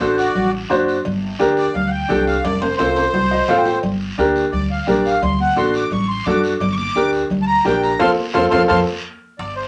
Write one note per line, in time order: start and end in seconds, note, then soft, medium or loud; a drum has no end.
0.00 0.29 A1 medium
0.00 0.25 D4 medium
0.00 0.25 F#4 medium
0.00 0.25 A4 medium
0.00 0.17 C5 medium
0.00 high conga medium
0.00 short guiro medium
0.17 0.50 F#4 medium
0.17 0.52 D5 medium
0.17 short guiro medium
0.35 0.63 A1 medium
0.35 cowbell medium
0.35 low conga medium
0.35 long guiro medium
0.69 0.98 F#2 medium
0.69 0.94 D4 medium
0.69 0.94 F#4 medium
0.69 0.95 C5 loud
0.69 high conga medium
0.69 low timbale medium
0.69 short guiro medium
0.88 short guiro medium
1.05 1.33 G1 medium
1.05 cowbell loud
1.05 low conga medium
1.05 long guiro medium
1.39 1.68 D2 medium
1.39 1.64 D4 medium
1.39 1.64 G4 medium
1.39 1.64 A#4 medium
1.39 high conga medium
1.39 short guiro medium
1.57 1.75 D5 loud
1.57 short guiro medium
1.74 2.02 D2 medium
1.74 1.92 F5 loud
1.74 cowbell medium
1.74 low conga medium
1.74 long guiro medium
1.87 1.90 F#5 medium
1.87 2.25 G5 medium
2.09 2.37 C2 medium
2.09 2.33 D4 medium
2.09 2.34 G4 medium
2.09 2.34 A4 medium
2.09 high conga medium
2.09 low conga medium
2.09 low timbale medium
2.09 short guiro medium
2.27 2.44 F5 medium
2.27 short guiro medium
2.44 2.72 F1 medium
2.44 2.61 D5 loud
2.44 cowbell loud
2.44 low conga medium
2.44 high timbale loud
2.44 long guiro medium
2.61 2.75 C5 medium
2.61 high conga medium
2.61 high timbale loud
2.77 3.07 C2 medium
2.77 3.03 C4 medium
2.77 3.04 F4 medium
2.77 3.04 A4 medium
2.77 3.79 C5 loud
2.77 high conga medium
2.77 high timbale medium
2.77 short guiro medium
2.96 high timbale medium
2.96 short guiro medium
3.13 3.42 C2 medium
3.13 cowbell medium
3.13 low conga medium
3.13 low timbale medium
3.13 long guiro medium
3.31 3.47 D#5 medium
3.31 low timbale medium
3.48 3.76 A1 medium
3.48 3.73 C4 medium
3.48 3.73 F4 medium
3.48 3.73 A4 medium
3.48 3.57 F5 medium
3.48 high conga medium
3.48 low timbale medium
3.48 short guiro medium
3.58 3.82 G5 medium
3.65 low timbale medium
3.65 short guiro medium
3.83 4.11 G1 medium
3.83 cowbell loud
3.83 low conga medium
3.83 long guiro medium
4.18 4.46 D2 medium
4.18 4.42 D4 medium
4.18 4.43 G4 medium
4.18 4.43 A#4 medium
4.18 high conga medium
4.18 short guiro medium
4.36 short guiro medium
4.52 4.80 D2 medium
4.52 4.69 D5 medium
4.52 cowbell medium
4.52 low conga medium
4.52 long guiro medium
4.71 4.88 F5 medium
4.87 5.15 A#1 medium
4.87 5.12 D4 medium
4.87 5.12 G4 medium
4.87 5.12 A#4 medium
4.87 5.05 D5 medium
4.87 high conga medium
4.87 low conga medium
4.87 short guiro medium
5.05 5.22 F5 medium
5.05 short guiro medium
5.22 5.50 D2 medium
5.22 5.40 C6 medium
5.22 cowbell loud
5.22 low conga medium
5.22 long guiro medium
5.40 5.57 F#5 medium
5.40 high conga medium
5.56 5.84 A1 medium
5.56 5.81 D4 medium
5.56 5.81 F#4 medium
5.56 5.81 A4 medium
5.56 5.74 C6 medium
5.56 high conga medium
5.56 short guiro medium
5.74 5.92 D6 medium
5.74 short guiro medium
5.90 6.19 A1 medium
5.90 6.09 C#6 medium
5.90 cowbell medium
5.90 low conga medium
5.90 long guiro medium
6.08 6.26 C6 medium
6.25 6.54 F#2 medium
6.25 6.51 D4 medium
6.25 6.51 F#4 medium
6.25 6.51 A4 medium
6.25 6.42 D6 medium
6.25 high conga medium
6.25 low conga medium
6.25 short guiro medium
6.43 short guiro medium
6.60 6.89 G1 medium
6.60 6.75 D6 medium
6.60 cowbell loud
6.60 low conga medium
6.60 long guiro medium
6.72 6.75 C#6 medium
6.76 7.11 D6 loud
6.76 high conga medium
6.95 7.23 D2 medium
6.95 7.20 D4 medium
6.95 7.20 G4 medium
6.95 7.20 A#4 medium
6.95 high conga medium
6.95 short guiro medium
7.13 short guiro medium
7.30 7.58 D2 medium
7.30 cowbell medium
7.30 low conga medium
7.30 long guiro medium
7.42 7.45 A5 medium
7.47 7.64 A#5 loud
7.65 7.93 A#1 medium
7.65 7.90 D4 medium
7.65 7.90 G4 medium
7.65 7.90 A#4 medium
7.65 7.82 G5 medium
7.65 high conga medium
7.65 low timbale medium
7.65 short guiro medium
7.83 8.00 A#5 medium
7.83 short guiro medium
7.99 8.13 F2 loud
7.99 8.11 C4 loud
7.99 8.11 F4 loud
7.99 8.11 A4 loud
7.99 8.11 A5 medium
7.99 8.11 C6 loud
7.99 8.11 F6 medium
7.99 high conga loud
7.99 high timbale loud
7.99 long guiro loud
8.34 8.48 F2 loud
8.34 8.46 C4 loud
8.34 8.45 F4 medium
8.34 8.45 A4 loud
8.34 8.46 A5 medium
8.34 8.46 C6 medium
8.34 8.46 F6 medium
8.34 high conga loud
8.34 high timbale medium
8.34 long guiro loud
8.50 8.65 F2 loud
8.50 8.63 C4 loud
8.50 8.63 F4 loud
8.50 8.63 A4 loud
8.50 8.62 A5 loud
8.50 8.62 C6 loud
8.50 8.62 F6 loud
8.50 high conga medium
8.50 high timbale loud
8.50 long guiro loud
8.68 8.83 F2 loud
8.68 8.80 C4 medium
8.68 8.80 F4 loud
8.68 8.80 A4 loud
8.68 8.80 A5 loud
8.68 8.80 C6 loud
8.68 8.80 F6 medium
8.68 high conga loud
8.68 high timbale medium
8.68 long guiro loud
9.39 9.67 G1 medium
9.39 9.55 D5 medium
9.39 high timbale medium
9.39 long guiro medium
9.56 9.68 C5 medium